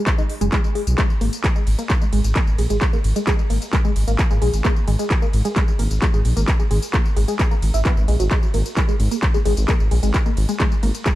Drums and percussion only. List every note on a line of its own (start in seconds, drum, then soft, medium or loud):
0.07 kick loud
0.07 clap loud
0.07 closed hi-hat medium
0.07 tambourine medium
0.18 tambourine soft
0.30 open hi-hat loud
0.41 closed hi-hat medium
0.41 tambourine medium
0.52 kick loud
0.52 clap loud
0.52 closed hi-hat medium
0.52 tambourine medium
0.64 tambourine soft
0.75 open hi-hat medium
0.87 closed hi-hat medium
0.87 tambourine medium
0.98 kick loud
0.98 clap loud
0.98 closed hi-hat medium
0.98 ride medium
0.98 tambourine soft
1.10 tambourine soft
1.21 open hi-hat loud
1.21 ride medium
1.33 closed hi-hat medium
1.33 tambourine medium
1.44 kick loud
1.44 clap loud
1.44 closed hi-hat medium
1.44 ride medium
1.44 tambourine medium
1.56 tambourine soft
1.67 open hi-hat loud
1.67 ride medium
1.79 closed hi-hat medium
1.79 tambourine medium
1.90 kick loud
1.90 clap loud
1.90 closed hi-hat medium
1.90 ride medium
1.90 tambourine medium
2.01 tambourine soft
2.13 open hi-hat loud
2.13 ride medium
2.24 closed hi-hat medium
2.24 tambourine medium
2.36 kick loud
2.36 clap loud
2.36 closed hi-hat medium
2.36 ride medium
2.36 tambourine soft
2.47 tambourine soft
2.58 open hi-hat loud
2.58 ride medium
2.70 closed hi-hat medium
2.70 tambourine medium
2.81 kick loud
2.81 clap loud
2.81 closed hi-hat medium
2.81 ride medium
2.81 tambourine soft
2.93 tambourine soft
3.04 open hi-hat loud
3.04 ride medium
3.16 closed hi-hat medium
3.16 tambourine medium
3.27 kick loud
3.27 clap loud
3.27 closed hi-hat medium
3.27 ride medium
3.27 tambourine soft
3.39 tambourine soft
3.50 open hi-hat loud
3.50 ride medium
3.62 closed hi-hat medium
3.62 tambourine medium
3.73 kick loud
3.73 clap loud
3.73 closed hi-hat medium
3.73 ride medium
3.73 tambourine medium
3.85 tambourine soft
3.96 open hi-hat loud
3.96 ride medium
4.08 closed hi-hat medium
4.08 tambourine medium
4.19 kick loud
4.19 clap loud
4.19 closed hi-hat medium
4.19 ride medium
4.19 tambourine medium
4.31 tambourine soft
4.42 open hi-hat loud
4.42 ride medium
4.53 closed hi-hat medium
4.53 tambourine medium
4.65 kick loud
4.65 clap loud
4.65 closed hi-hat medium
4.65 ride medium
4.65 tambourine medium
4.76 tambourine soft
4.88 open hi-hat loud
4.88 ride medium
4.99 closed hi-hat medium
4.99 tambourine medium
5.10 kick loud
5.10 clap loud
5.10 closed hi-hat medium
5.10 ride medium
5.10 tambourine medium
5.22 tambourine soft
5.33 open hi-hat loud
5.33 ride medium
5.45 closed hi-hat medium
5.45 tambourine medium
5.56 kick loud
5.56 clap loud
5.56 closed hi-hat medium
5.56 ride medium
5.56 tambourine medium
5.68 tambourine soft
5.79 open hi-hat loud
5.79 ride medium
5.91 closed hi-hat medium
5.91 tambourine medium
6.02 kick loud
6.02 clap loud
6.02 closed hi-hat medium
6.02 ride medium
6.02 tambourine medium
6.14 tambourine soft
6.25 open hi-hat loud
6.25 ride medium
6.37 closed hi-hat medium
6.37 tambourine medium
6.48 kick loud
6.48 clap loud
6.48 closed hi-hat medium
6.48 ride medium
6.48 tambourine medium
6.60 tambourine soft
6.71 open hi-hat loud
6.71 ride medium
6.82 closed hi-hat medium
6.82 tambourine medium
6.94 kick loud
6.94 clap loud
6.94 closed hi-hat medium
6.94 ride medium
6.94 tambourine medium
7.05 tambourine soft
7.17 open hi-hat loud
7.17 ride medium
7.28 closed hi-hat medium
7.28 tambourine medium
7.39 kick loud
7.39 clap loud
7.39 closed hi-hat medium
7.39 ride medium
7.39 tambourine medium
7.51 tambourine soft
7.62 open hi-hat loud
7.62 ride medium
7.74 closed hi-hat medium
7.74 tambourine medium
7.85 kick loud
7.85 clap loud
7.85 closed hi-hat medium
7.85 ride medium
7.85 tambourine medium
7.97 tambourine soft
8.08 open hi-hat loud
8.08 ride medium
8.20 closed hi-hat medium
8.20 tambourine medium
8.31 kick loud
8.31 clap loud
8.31 closed hi-hat medium
8.31 ride medium
8.31 tambourine medium
8.43 tambourine soft
8.54 open hi-hat loud
8.54 ride medium
8.66 closed hi-hat medium
8.66 tambourine medium
8.77 kick loud
8.77 clap loud
8.77 closed hi-hat medium
8.77 ride medium
8.77 tambourine medium
8.89 tambourine soft
9.00 open hi-hat loud
9.00 ride medium
9.11 closed hi-hat medium
9.11 tambourine medium
9.23 kick loud
9.23 clap loud
9.23 closed hi-hat medium
9.23 ride medium
9.23 tambourine medium
9.34 tambourine soft
9.45 open hi-hat loud
9.45 ride medium
9.57 closed hi-hat medium
9.57 tambourine medium
9.68 kick loud
9.68 clap loud
9.68 closed hi-hat medium
9.68 ride medium
9.68 tambourine medium
9.80 tambourine soft
9.91 open hi-hat loud
9.91 ride medium
10.03 closed hi-hat medium
10.03 tambourine medium
10.14 kick loud
10.14 clap loud
10.14 closed hi-hat medium
10.14 ride medium
10.14 tambourine medium
10.26 tambourine soft
10.37 open hi-hat loud
10.37 ride medium
10.49 closed hi-hat medium
10.49 tambourine medium
10.60 kick loud
10.60 clap loud
10.60 closed hi-hat medium
10.60 ride medium
10.60 tambourine medium
10.72 tambourine soft
10.83 open hi-hat medium
10.83 ride medium
10.95 closed hi-hat medium
10.95 tambourine medium
11.06 kick loud
11.06 clap loud
11.06 closed hi-hat medium
11.06 ride medium
11.06 tambourine medium